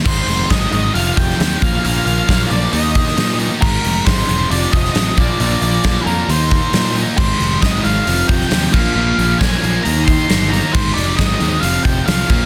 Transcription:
<<
  \new Staff \with { instrumentName = "Lead electric guitar" } { \time 4/4 \key aes \lydian \tempo 4 = 135 c''4 ees''8 ees''8 f''8 g''4 f''8 | f''8 f''4 d''8 ees''4. r8 | bes'4 c''4 d''8 ees''4 d''8 | d''8 d''8.~ d''32 aes'32 bes'8 c''4. r8 |
c''4 ees''8 f''4 g''4 f''8 | f''4 aes''4 bes''8 c'''4 bes''8 | c''8 d''8 ees''4 f''8 g''8 f''4 | }
  \new Staff \with { instrumentName = "Distorted electric guitar" } { \clef bass \time 4/4 \key aes \lydian <aes, ees aes>4 <aes, ees aes>8 <aes, ees aes>8 <f, c f>4 <f, c f>8 <bes, f bes>8 | <bes, f bes>4 <bes, f bes>8 <bes, f bes>8 <ees bes ees'>4 <ees bes ees'>8 <ees bes ees'>8 | <aes, ees aes>4 <aes, ees aes>8 <aes, ees aes>8 <f, c f>4 <f, c f>8 <bes, f bes>8 | <bes, f bes>4 <bes, f bes>8 <bes, f bes>8 <ees bes ees'>4 <ees bes ees'>8 <ees bes ees'>8 |
<aes, ees aes>4 <aes, ees aes>8 <aes, ees aes>8 <f, c f>4 <f, c f>8 <bes, f bes>8 | <bes, f bes>4 <bes, f bes>8 <bes, f bes>8 <ees bes ees'>4 <ees bes ees'>8 <ees bes ees'>8 | <aes, ees aes>4 <aes, ees aes>8 <aes, ees aes>8 <f, c f>4 <f, c f>8 <bes, f bes>8 | }
  \new Staff \with { instrumentName = "Distorted electric guitar" } { \clef bass \time 4/4 \key aes \lydian <aes, ees aes>4 <aes, ees aes>8 <aes, ees aes>8 <f, c f>4 <f, c f>8 <bes, f bes>8 | <bes, f bes>4 <bes, f bes>8 <bes, f bes>8 <ees bes ees'>4 <ees bes ees'>8 <ees bes ees'>8 | <aes, ees aes>4 <aes, ees aes>8 <aes, ees aes>8 <f, c f>4 <f, c f>8 <bes, f bes>8 | <bes, f bes>4 <bes, f bes>8 <bes, f bes>8 <ees bes ees'>4 <ees bes ees'>8 <ees bes ees'>8 |
<aes, ees aes>4 <aes, ees aes>8 <aes, ees aes>8 <f, c f>4 <f, c f>8 <bes, f bes>8 | <bes, f bes>4 <bes, f bes>8 <bes, f bes>8 <ees bes ees'>4 <ees bes ees'>8 <ees bes ees'>8 | <aes, ees aes>4 <aes, ees aes>8 <aes, ees aes>8 <f, c f>4 <f, c f>8 <bes, f bes>8 | }
  \new Staff \with { instrumentName = "Distorted electric guitar" } { \clef bass \time 4/4 \key aes \lydian r1 | r1 | r1 | r1 |
<aes, ees aes>4 <aes, ees aes>8 <aes, ees aes>8 <f, c f>4 <f, c f>8 <bes, f bes>8 | <bes, f bes>4 <bes, f bes>8 <bes, f bes>8 <ees bes ees'>4 <ees bes ees'>8 <ees bes ees'>8 | <aes, ees aes>4 <aes, ees aes>8 <aes, ees aes>8 <f, c f>4 <f, c f>8 <bes, f bes>8 | }
  \new Staff \with { instrumentName = "Picked electric bass" } { \clef bass \time 4/4 \key aes \lydian aes,,8 f,,8 aes,,8 aes,,8 f,,8 f,,8 ees,8 bes,,8 | bes,,8 bes,,8 bes,,8 bes,,8 ees,4 bes,4 | aes,,8 f,,8 aes,,8 e,,8 f,,8 f,,8 a,,8 bes,,8 | bes,,8 bes,,8 bes,,8 f,8 ees,4 bes,4 |
aes,,8 f,,8 aes,,8 aes,,8 f,,8 f,,8 ees,8 bes,,8 | bes,,8 bes,,8 bes,,8 bes,,8 ees,4 g,,4 | aes,,8 f,,8 aes,,8 ees,8 f,,8 f,,8 c,8 bes,,8 | }
  \new DrumStaff \with { instrumentName = "Drums" } \drummode { \time 4/4 <cymc bd>8 hho8 <hho bd sn>8 hho8 hho8 <hho bd>16 sn16 <hho sn>8 <hho bd>8 | hho8 hho8 <hho bd sn>8 hho8 hho8 <hho bd>16 sn16 <hho sn>8 hho8 | <cymc bd>8 hho8 <hho bd sn>8 hho8 hho8 <hho bd>16 sn16 <hho sn>8 <hho bd>8 | hho8 hho8 <hho bd sn>8 hho8 hho8 <hho bd>8 <hho sn>8 hho8 |
<cymc bd>8 hho8 <hho bd sn>8 hho8 hho8 <hho bd>16 sn16 <hho sn>8 <cymc bd>8 | r8 hho8 <hho bd sn>8 hho8 hho8 <hho bd>8 <hho sn>8 hho8 | <cymc bd>8 hho8 <hho bd sn>8 hho8 hho8 <hho bd>8 <hho sn>8 <cymc bd>8 | }
>>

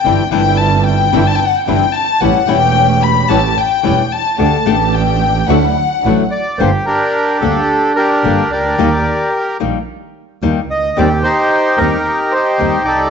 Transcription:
<<
  \new Staff \with { instrumentName = "Violin section" } { \time 4/4 \key d \mixolydian \tempo 4 = 110 g''8 g''8 a''8 g''8~ \tuplet 3/2 { g''8 a''16 g''16 fis''16 g''16 } g''8 a''8 | fis''8 g''4 b''8 a''8 g''4 a''8 | a''4 g''4 fis''4. r8 | \key g \minor r1 |
r1 | r1 | }
  \new Staff \with { instrumentName = "Bandoneon" } { \time 4/4 \key d \mixolydian << { r1 | r1 | r2. r8 d''8 | \key g \minor c''8 bes'4 a'4 bes'4 d''8~ |
d''4 r2 r8 ees''8 | d''8 c''4 bes'4 c''4 d''8 | } \\ { r1 | r1 | r1 | g'8 <d' g'>4 d'4 <d' g'>4 <g' bes'>8~ |
<g' bes'>4. r2 r8 | g'8 <ees' g'>4 <ees' g'>4 <ees' g'>4 <g' a'>8 | } >> }
  \new Staff \with { instrumentName = "String section" } { \time 4/4 \key d \mixolydian <c' d' e'>8 <c' d' e'>4. <c' d' e'>8 r8 <c' d' e'>8 r8 | <a cis' g'>8 <a cis' g'>4. <a cis' g'>8 r8 <a cis' g'>8 r8 | <a d' g'>8 <a d' g'>4. <fis d' e'>8 r8 <fis d' e'>8 r8 | \key g \minor r1 |
r1 | r1 | }
  \new Staff \with { instrumentName = "Nylon-string guitar" } { \time 4/4 \key d \mixolydian <c e g d' e'>8 <c e g d' e'>8 r4 <c e g d' e'>8 r8 <c e g d' e'>8 r8 | <e g cis' e'>8 <e g cis' e'>8 r4 <e g cis' e'>8 r8 <e g cis' e'>8 r8 | <d a d' g'>8 <d a d' g'>8 r4 <d fis a e' fis'>8 r8 <d fis a e' fis'>8 r8 | \key g \minor <d g bes d' g'>8 r4 <d g bes d' g'>8 r4 <d g bes d' g'>8 r8 |
<ees g bes ees' g'>8 r4 <ees g bes ees' g'>8 r4 <ees g bes ees' g'>8 r8 | <ees g c'>8 r4 <ees g c'>8 r4 <ees g c'>8 r8 | }
  \new Staff \with { instrumentName = "Double bass" } { \clef bass \time 4/4 \key d \mixolydian g,,8 g,,4. g,,8 r8 g,,8 r8 | a,,8 e,,4. a,,8 r8 e,,8 r8 | d,8 a,,4. d,8 r8 a,,8 r8 | \key g \minor g,,8 r4 d,8 r4 g,,8 cis,8 |
ees,8 r4 bes,,8 r4 ees,8 cis,8 | ees,8 r4 ees,8 r4 ees,8 c,8 | }
>>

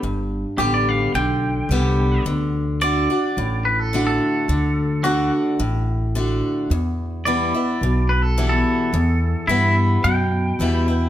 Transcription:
<<
  \new Staff \with { instrumentName = "Clean electric guitar" } { \time 4/4 \key d \mixolydian \tempo 4 = 108 r4 g'16 d''16 f''8 g''2 | r4 d''4. b'16 a'8 a'8.~ | a'4 fis'8 r2 r8 | r4 d''4. b'16 a'8 a'8.~ |
a'4 e'8 r8 g''2 | }
  \new Staff \with { instrumentName = "Steel-string acoustic guitar" } { \time 4/4 \key d \mixolydian << { r4 <d g b g'>4 r4 <d g b g'>4 | r4 <d a d' fis'>8 <d' fis'>8 r4 <d a d' fis'>4 | r4 <d a d' fis'>4 r4 <d a d' fis'>4 | r4 <e g b e'>8 <b e'>8 r4 <e g b e'>4 |
r4 <e g b e'>4 r4 <e g b e'>8 <b e'>8 | } \\ { g,2 d2 | d2 a,2 | d2 a,2 | e,2 b,2 |
e,2 b,2 | } >> }
  \new Staff \with { instrumentName = "Upright bass" } { \clef bass \time 4/4 \key d \mixolydian g,,4 a,,4 b,,4 c,4 | d,2 a,,2 | d,2 a,,2 | e,2 b,,2 |
e,4 g,4 fis,4 e,4 | }
>>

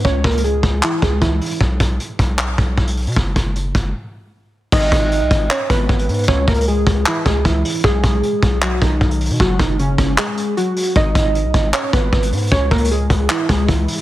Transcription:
<<
  \new Staff \with { instrumentName = "Synth keys" } { \time 4/4 \key gis \minor \tempo 4 = 154 <cis' cis''>8 <ais ais'>8 <gis gis'>4 <e e'>8 <gis gis'>8 <e e'>4 | r1 | r1 | <dis' dis''>2 <cis' cis''>8 <b b'>4. |
<cis' cis''>8 <ais ais'>8 <gis gis'>4 <e e'>8 <gis gis'>8 <e e'>4 | <gis gis'>2 <fis fis'>8 <dis dis'>4. | <fis fis'>8 <dis dis'>8 <cis cis'>4 <gis gis'>4 <fis fis'>4 | <dis' dis''>2 <cis' cis''>8 <b b'>4. |
<cis' cis''>8 <ais ais'>8 <gis gis'>4 <e e'>8 <gis gis'>8 <e e'>4 | }
  \new Staff \with { instrumentName = "808-style bass" } { \clef bass \time 4/4 \key gis \minor cis,8 cis,4 cis,8 r8 cis,8 cis,8 r8 | b,,8 b,,8 r8 b,,4 b,,8 b,,8. b,16 | fis,,8 fis,,4 fis,,8 r2 | gis,,8 gis,,8. b,,16 gis,,8 r8 gis,,8 gis,,8 gis,8 |
cis,8 cis,4 cis,8 r8 cis,8 cis,8 r8 | b,,8 b,,8 r8 b,,4 b,,8 b,,8. b,16 | fis,,8 fis,,4 fis,,8 r2 | gis,,8 gis,,8. b,,16 gis,,8 r8 gis,,8 gis,,8 gis,8 |
cis,8 cis,4 cis,8 r8 cis,8 cis,8 r8 | }
  \new DrumStaff \with { instrumentName = "Drums" } \drummode { \time 4/4 \tuplet 3/2 { <hh bd>16 r16 r16 <hh bd>16 hh16 hh16 } hh8 <hh bd>8 <hc hh>8 <hh bd>8 <hh bd>8 <hh hho>32 hh32 hh32 hh32 | bd8 <hh bd>8 hh8 <hh bd>8 <hc hh>8 <hh bd>8 <hh bd>16 hh16 hh32 hh32 hh32 hh32 | bd8 <hh bd>8 hh8 <hh bd>8 r4 r4 | <cymc bd>8 <hh bd>8 hh8 <hh bd>8 <hc hh>8 <hh bd>8 <hh bd>16 hh16 hh32 hh32 hh32 hh32 |
\tuplet 3/2 { bd16 r16 r16 <hh bd>16 hh16 hh16 } hh8 <hh bd>8 <hc hh>8 <hh bd>8 <hh bd>8 <hh hho>32 hh32 hh32 hh32 | bd8 <hh bd>8 hh8 <hh bd>8 <hc hh>8 <hh bd>8 <hh bd>16 hh16 hh32 hh32 hh32 hh32 | <hh bd>8 <hh bd>8 hh8 <hh bd>8 <hc hh>8 hh8 \tuplet 3/2 { hh16 r16 r16 <hh hho>16 hh16 hh16 } | bd8 <hh bd>8 hh8 <hh bd>8 <hc hh>8 <hh bd>8 <hh bd>16 hh16 hh32 hh32 hh32 hh32 |
\tuplet 3/2 { <hh bd>16 r16 r16 <hh bd>16 hh16 hh16 } hh8 <hh bd>8 <hc hh>8 <hh bd>8 <hh bd>8 <hh hho>32 hh32 hh16 | }
>>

